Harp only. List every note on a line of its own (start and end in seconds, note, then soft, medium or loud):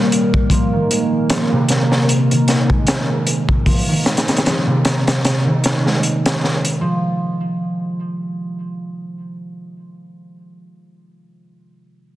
0.00 0.55 D#3 medium
0.00 0.55 G3 medium
0.00 1.70 A#3 medium
0.51 0.75 F3 medium
0.73 1.54 D#3 medium
0.91 2.33 G#3 medium
1.30 1.54 F3 medium
1.52 2.33 C3 medium
1.70 4.84 A#3 medium
2.31 3.87 D#3 medium
2.70 3.91 G#3 medium
3.66 3.91 F3 medium
3.88 4.70 D#3 medium
4.05 5.49 G#3 medium
4.45 4.70 F3 medium
4.67 5.49 C3 medium
5.45 6.87 D#3 medium
5.85 6.87 G#3 medium
6.81 10.63 F3 medium